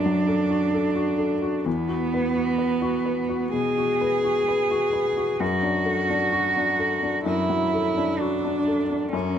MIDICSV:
0, 0, Header, 1, 3, 480
1, 0, Start_track
1, 0, Tempo, 931677
1, 854, Time_signature, 4, 2, 24, 8
1, 4836, End_track
2, 0, Start_track
2, 0, Title_t, "Felt piano"
2, 0, Program_c, 0, 0
2, 0, Control_c, 0, 64, 127
2, 0, Note_on_c, 0, 42, 64
2, 0, Note_on_c, 0, 66, 59
2, 0, Note_on_c, 0, 69, 58
2, 30, Note_on_c, 0, 54, 59
2, 142, Note_off_c, 0, 69, 0
2, 142, Note_on_c, 0, 69, 66
2, 216, Note_off_c, 0, 54, 0
2, 258, Note_off_c, 0, 66, 0
2, 258, Note_on_c, 0, 66, 61
2, 331, Note_off_c, 0, 69, 0
2, 382, Note_on_c, 0, 69, 65
2, 449, Note_off_c, 0, 66, 0
2, 492, Note_on_c, 0, 66, 62
2, 570, Note_off_c, 0, 69, 0
2, 610, Note_on_c, 0, 69, 58
2, 685, Note_off_c, 0, 66, 0
2, 732, Note_on_c, 0, 66, 59
2, 804, Note_off_c, 0, 69, 0
2, 834, Note_off_c, 0, 42, 0
2, 853, Note_off_c, 0, 66, 0
2, 854, Note_on_c, 0, 40, 79
2, 864, Control_c, 0, 64, 0
2, 955, Control_c, 0, 64, 127
2, 971, Note_on_c, 0, 66, 61
2, 1101, Note_on_c, 0, 71, 66
2, 1163, Note_off_c, 0, 66, 0
2, 1213, Note_on_c, 0, 66, 60
2, 1288, Note_off_c, 0, 71, 0
2, 1331, Note_on_c, 0, 71, 67
2, 1404, Note_off_c, 0, 66, 0
2, 1452, Note_on_c, 0, 66, 67
2, 1526, Note_off_c, 0, 71, 0
2, 1574, Note_on_c, 0, 71, 63
2, 1650, Note_off_c, 0, 66, 0
2, 1695, Note_on_c, 0, 66, 60
2, 1773, Note_off_c, 0, 71, 0
2, 1802, Note_off_c, 0, 40, 0
2, 1817, Note_on_c, 0, 47, 60
2, 1894, Note_off_c, 0, 66, 0
2, 1944, Note_on_c, 0, 66, 59
2, 2014, Note_off_c, 0, 47, 0
2, 2067, Note_on_c, 0, 71, 65
2, 2138, Note_off_c, 0, 66, 0
2, 2186, Note_on_c, 0, 66, 61
2, 2259, Note_off_c, 0, 71, 0
2, 2310, Note_on_c, 0, 71, 70
2, 2378, Note_off_c, 0, 66, 0
2, 2426, Note_on_c, 0, 66, 64
2, 2500, Note_off_c, 0, 71, 0
2, 2540, Note_on_c, 0, 71, 59
2, 2618, Note_off_c, 0, 66, 0
2, 2664, Note_on_c, 0, 66, 63
2, 2734, Note_off_c, 0, 71, 0
2, 2783, Note_on_c, 0, 42, 78
2, 2785, Note_off_c, 0, 66, 0
2, 2794, Control_c, 0, 64, 0
2, 2867, Control_c, 0, 64, 127
2, 2898, Note_on_c, 0, 62, 63
2, 3014, Note_on_c, 0, 69, 61
2, 3093, Note_off_c, 0, 62, 0
2, 3141, Note_on_c, 0, 62, 67
2, 3211, Note_off_c, 0, 69, 0
2, 3257, Note_on_c, 0, 66, 68
2, 3335, Note_off_c, 0, 62, 0
2, 3384, Note_on_c, 0, 62, 63
2, 3453, Note_off_c, 0, 66, 0
2, 3500, Note_on_c, 0, 69, 61
2, 3578, Note_off_c, 0, 62, 0
2, 3621, Note_on_c, 0, 62, 59
2, 3695, Note_off_c, 0, 69, 0
2, 3725, Note_off_c, 0, 42, 0
2, 3740, Note_on_c, 0, 42, 71
2, 3816, Note_off_c, 0, 62, 0
2, 3862, Note_on_c, 0, 54, 61
2, 3986, Note_on_c, 0, 69, 67
2, 4056, Note_off_c, 0, 54, 0
2, 4103, Note_on_c, 0, 62, 60
2, 4177, Note_off_c, 0, 69, 0
2, 4228, Note_on_c, 0, 66, 63
2, 4295, Note_off_c, 0, 62, 0
2, 4352, Note_on_c, 0, 62, 63
2, 4418, Note_off_c, 0, 66, 0
2, 4470, Note_on_c, 0, 69, 60
2, 4541, Note_off_c, 0, 62, 0
2, 4586, Note_on_c, 0, 62, 57
2, 4660, Note_off_c, 0, 69, 0
2, 4681, Note_off_c, 0, 42, 0
2, 4703, Note_on_c, 0, 42, 77
2, 4706, Note_off_c, 0, 62, 0
2, 4715, Control_c, 0, 64, 0
2, 4807, Control_c, 0, 64, 127
2, 4836, Note_off_c, 0, 42, 0
2, 4836, End_track
3, 0, Start_track
3, 0, Title_t, "Cello"
3, 0, Program_c, 1, 42
3, 0, Note_on_c, 1, 62, 107
3, 850, Note_on_c, 1, 59, 121
3, 858, Note_off_c, 1, 62, 0
3, 1818, Note_off_c, 1, 59, 0
3, 1821, Note_on_c, 1, 68, 127
3, 2782, Note_on_c, 1, 66, 117
3, 2789, Note_off_c, 1, 68, 0
3, 3734, Note_off_c, 1, 66, 0
3, 3737, Note_on_c, 1, 64, 114
3, 4218, Note_on_c, 1, 62, 106
3, 4226, Note_off_c, 1, 64, 0
3, 4699, Note_off_c, 1, 62, 0
3, 4702, Note_on_c, 1, 61, 106
3, 4836, Note_off_c, 1, 61, 0
3, 4836, End_track
0, 0, End_of_file